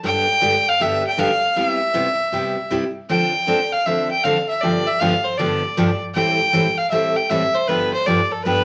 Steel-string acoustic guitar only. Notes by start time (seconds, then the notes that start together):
0.03 G2 D3 G3 B3 D4 G4
0.41 G2 D3 G3 B3 D4 G4
0.80 G2 D3 G3 B3 D4 G4
1.17 G2 D3 G3 B3 D4 G4
1.56 C3 G3 B3 E4 G4
1.94 C3 G3 B3 E4 G4
2.32 C3 G3 B3 E4 G4
2.71 C3 G3 B3 E4 G4
3.09 D3 F3 C4 D4 A4
3.47 D3 F3 C4 D4 A4
3.86 D3 F3 C4 D4 A4
4.24 D3 F3 C4 D4 A4
4.62 G2 D3 F3 B3 D4 G4
5.01 G2 D3 F3 B3 D4 G4
5.39 G2 D3 F3 B3 D4 G4
5.77 G2 D3 F3 B3 D4 G4
6.15 A2 E3 G3 C4 E4 A4
6.53 A2 E3 G3 C4 E4 A4
6.92 A2 E3 G3 C4 E4 A4
7.30 A2 E3 G3 C4 E4 A4
7.68 G2 D3 F3 B3 D4 G4
8.06 G2 D3 F3 B3 D4 G4
8.45 G2 D3 F3 B3 D4 G4